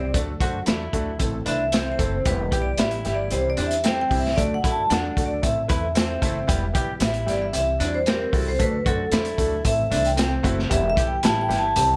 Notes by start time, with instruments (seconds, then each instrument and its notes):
Already playing: upright bass C2, tonewheel organ E3 G3 C4 G4, clean electric guitar C4, vibraphone D5
0.14 upright bass D2, tonewheel organ F#3 A3 D4 A4, upright piano A3 D4 F#4 A4, kick, closed hi-hat
0.40 upright bass F#2, upright piano A3 D4 F#4 C5, clean electric guitar F#4, kick, closed hi-hat
0.66 upright bass E2, upright piano A3 D4 F#4 A4, clean electric guitar E4, snare, closed hi-hat
0.93 upright bass D2, upright piano A3 D4 F#4 A4, kick, closed hi-hat
1.19 upright bass A1, tonewheel organ E3 C4, upright piano A3 C4 E4 A4, kick, closed hi-hat
1.46 upright bass C2, upright piano A3 C4 E4 B4, clean electric guitar D4, vibraphone E5, closed hi-hat
1.72 upright piano A3 C4 E4 A4, clean electric guitar C4, snare, closed hi-hat
1.92 vibraphone C5
1.98 upright bass F#1, upright piano A3 C4 E4 A4, kick, closed hi-hat
2.24 upright bass E1, tonewheel organ G3 B3 G4, upright piano G3 B3 E4 G4, vibraphone B4, kick, closed hi-hat
2.52 upright bass B1, upright piano G3 B3 E4 G4, clean electric guitar G4, kick, closed hi-hat
2.62 vibraphone D5
2.78 upright bass A1, upright piano G3 B3 E4 G4, clean electric guitar E4, vibraphone E5, snare, closed hi-hat
2.91 closed hi-hat
3.05 upright bass G1, upright piano G3 B3 E4 G4, snare, closed hi-hat
3.14 vibraphone D5
3.30 upright bass C2, tonewheel organ G3 C4, upright piano G3 C4 E4 G4, vibraphone C5, closed hi-hat
3.50 vibraphone D5
3.57 upright bass E2, upright piano G3 C4 E4 G4, clean electric guitar D4, closed hi-hat
3.66 vibraphone E5
3.71 closed hi-hat
3.84 upright piano G3 C4 E4 A4, clean electric guitar C4, vibraphone G5, snare, closed hi-hat
4.01 vibraphone G5
4.10 upright bass C2, upright piano G3 C4 E4 G4, kick, open hi-hat
4.19 vibraphone E5
4.26 snare
4.36 upright bass D2, tonewheel organ F#3 A3 D4 A4, upright piano A3 D4 F#4 A4, vibraphone D5, kick, closed hi-hat
4.54 vibraphone F#5
4.64 upright bass F#2, upright piano A3 D4 F#4 A4, clean electric guitar E4, kick, closed hi-hat
4.71 vibraphone A5
4.90 upright bass E2, upright piano A3 D4 F#4 A4, clean electric guitar D4, vibraphone F#5, snare, closed hi-hat
5.17 upright bass D2, upright piano A3 D4 F#4 A4, kick, closed hi-hat
5.26 vibraphone D5
5.42 upright bass A1, tonewheel organ E3 C4, upright piano A3 C4 E4 A4, vibraphone E5, kick, closed hi-hat
5.68 upright bass E2, upright piano A3 C4 E4 B4, clean electric guitar E4, kick, closed hi-hat
5.95 upright piano A3 C4 E4 A4, clean electric guitar C4, snare, closed hi-hat
6.22 upright bass F#1, upright piano A3 C4 E4 A4, kick, closed hi-hat
6.47 upright bass E1, upright piano G3 B3 E4 G4, tonewheel organ G3 B3 G4, kick, closed hi-hat
6.74 upright bass B1, upright piano G3 B3 E4 G4, clean electric guitar G4, kick, closed hi-hat
7.00 upright bass A1, upright piano G3 B3 E4 G4, clean electric guitar E4, vibraphone E5, snare, closed hi-hat
7.14 closed hi-hat
7.26 upright bass G1, upright piano G3 B3 E4 G4, vibraphone D5, snare, closed hi-hat
7.42 vibraphone E5
7.53 upright bass C2, tonewheel organ E3 C4, upright piano G3 C4 E4 G4, vibraphone E5, closed hi-hat
7.80 upright bass E2, upright piano G3 C4 E4 F#4, clean electric guitar D4, vibraphone D5, closed hi-hat
7.94 vibraphone C5
8.06 upright piano G3 C4 E4 G4, clean electric guitar C4, vibraphone A#4, snare, closed hi-hat
8.33 upright bass C2, upright piano G3 C4 E4 F#4, vibraphone A4, kick, open hi-hat
8.48 vibraphone C5
8.58 upright bass D2, tonewheel organ F#3 A3 D4 A4, upright piano A3 D4 F#4 A4, vibraphone B4, kick, closed hi-hat
8.85 upright bass F#2, upright piano A3 D4 F#4 C5, clean electric guitar F#4, vibraphone A4, kick, closed hi-hat
9.12 upright bass E2, upright piano A3 D4 F#4 C5, clean electric guitar E4, snare, closed hi-hat
9.25 closed hi-hat
9.37 upright bass D2, upright piano A3 D4 F#4 A4, kick, closed hi-hat
9.64 upright bass A1, tonewheel organ E3 C4, upright piano A3 C4 E4 A4, vibraphone E5, kick, closed hi-hat
9.90 upright bass C2, upright piano A3 C4 E4 A4, clean electric guitar D4, vibraphone E5, closed hi-hat
10.05 vibraphone G5, closed hi-hat
10.17 upright piano A3 C4 E4 A4, clean electric guitar C4, snare, closed hi-hat
10.43 upright bass F#1, upright piano A3 C4 E4 F#4, kick, closed hi-hat
10.59 snare
10.69 upright bass E1, tonewheel organ E3 G3 B3 G4, upright piano G3 B3 E4 G4, vibraphone E5, kick, closed hi-hat
10.90 vibraphone E5
10.95 upright bass B1, upright piano G3 B3 E4 A4, clean electric guitar G4, kick, closed hi-hat
11.07 vibraphone G5
11.23 upright bass A1, upright piano G3 B3 E4 G4, clean electric guitar E4, vibraphone A5, snare, closed hi-hat
11.41 vibraphone G5
11.48 upright bass G1, upright piano G3 B3 E4 G4, snare, closed hi-hat
11.58 vibraphone A5
11.76 upright bass C2, tonewheel organ E3 C4 G4, upright piano G3 C4 E4 G4, closed hi-hat